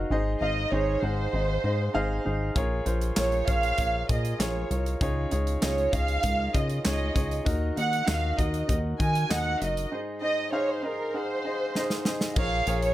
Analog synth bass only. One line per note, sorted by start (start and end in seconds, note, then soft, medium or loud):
0.11 0.36 G#1 medium
0.41 0.66 G#1 loud
0.72 0.97 G#1 medium
1.02 1.28 G#1 medium
1.33 1.58 G#1 loud
1.64 1.89 G#2 medium
1.95 2.20 G#1 medium
2.26 2.51 G#1 medium
2.56 2.81 A#1 medium
2.86 3.12 A#1 loud
3.17 3.42 A#1 medium
3.48 3.73 A#1 medium
3.79 4.04 A#1 loud
4.09 4.35 A#2 medium
4.40 4.65 A#1 medium
4.71 4.96 C2 medium
5.01 5.26 C#2 medium
5.33 5.57 C#2 medium
5.64 5.88 C#2 loud
5.93 6.18 C#2 medium
6.24 6.49 C#2 loud
6.55 6.80 C#3 medium
6.86 7.11 C#2 medium
7.16 7.41 C#2 medium
7.47 7.72 D#2 medium
7.77 8.02 D#2 medium
8.08 8.33 D#2 loud
8.38 8.64 D#2 loud
8.69 8.94 D#2 loud
9.00 9.25 D#3 medium
9.31 9.56 D#2 medium
9.61 9.86 F#1 medium
12.37 12.62 A#1 medium
12.67 12.92 A#1 loud